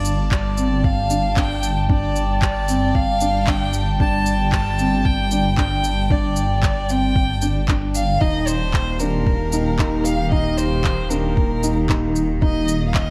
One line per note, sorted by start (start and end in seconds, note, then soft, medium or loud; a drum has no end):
0.00 8.18 G1 medium
0.00 8.21 G3 medium
0.00 0.28 D5 medium
0.00 8.97 D5 medium
0.00 1.21 F5 medium
0.00 10.05 A5 medium
0.05 shaker medium
0.32 0.86 D5 medium
0.32 kick loud
0.32 clap loud
0.58 0.89 C4 medium
0.58 shaker medium
0.70 9.61 G5 loud
0.84 1.38 F5 medium
0.84 kick loud
1.10 1.26 D4 medium
1.10 shaker medium
1.37 1.68 D4 medium
1.37 1.76 G5 loud
1.37 kick loud
1.37 clap loud
1.63 shaker medium
1.89 2.20 D4 medium
1.89 2.39 D5 medium
1.89 kick loud
2.16 shaker medium
2.42 2.97 D5 loud
2.42 kick loud
2.42 clap loud
2.68 3.00 C4 medium
2.68 shaker medium
2.95 3.50 F5 loud
2.95 kick loud
3.21 3.37 D4 medium
3.21 shaker medium
3.47 3.78 D4 medium
3.47 3.88 G5 loud
3.47 kick loud
3.47 clap loud
3.73 shaker medium
4.00 4.31 D4 medium
4.00 4.49 A5 loud
4.00 kick loud
4.26 shaker medium
4.52 5.07 A5 loud
4.52 kick loud
4.52 clap loud
4.79 5.10 C4 medium
4.79 shaker medium
5.05 5.58 G5 loud
5.05 kick loud
5.31 5.47 D4 medium
5.31 shaker medium
5.58 5.89 D4 medium
5.58 6.13 G5 loud
5.58 kick loud
5.58 clap medium
5.84 shaker medium
6.10 6.41 D4 medium
6.10 6.63 D5 loud
6.10 kick loud
6.36 shaker medium
6.63 6.92 D5 medium
6.63 kick loud
6.63 clap loud
6.89 7.21 C4 medium
6.89 7.69 G5 loud
6.89 shaker medium
7.16 kick loud
7.42 7.58 D4 medium
7.42 shaker medium
7.68 8.00 D4 medium
7.68 kick loud
7.68 clap medium
7.95 8.22 F5 loud
7.95 shaker medium
8.21 13.10 D#1 medium
8.21 13.10 D#3 medium
8.21 8.52 D#4 medium
8.21 8.49 D#5 loud
8.21 kick loud
8.47 9.01 C5 loud
8.47 shaker medium
8.59 13.10 A#3 medium
8.74 kick loud
8.74 clap medium
8.87 13.10 G4 medium
8.99 9.31 D4 medium
8.99 10.06 A#4 loud
8.99 12.61 F5 medium
8.99 shaker medium
9.27 kick loud
9.53 9.68 D#4 medium
9.53 shaker medium
9.79 10.10 D#4 medium
9.79 kick loud
9.79 clap medium
10.04 10.31 F5 loud
10.04 shaker medium
10.31 10.63 D#4 loud
10.31 10.59 D#5 loud
10.31 kick loud
10.57 11.11 C5 loud
10.57 shaker medium
10.84 kick medium
10.84 clap medium
11.10 11.41 D4 medium
11.10 12.15 A#4 medium
11.10 shaker medium
11.37 kick loud
11.63 11.79 D#4 medium
11.63 shaker medium
11.89 12.21 D#4 medium
11.89 kick loud
11.89 clap medium
12.16 shaker medium
12.42 12.73 D#4 loud
12.42 12.85 D#5 medium
12.42 13.10 D#6 medium
12.42 kick loud
12.68 shaker medium
12.88 12.97 F5 medium
12.94 13.10 D#5 loud
12.94 kick loud
12.94 clap loud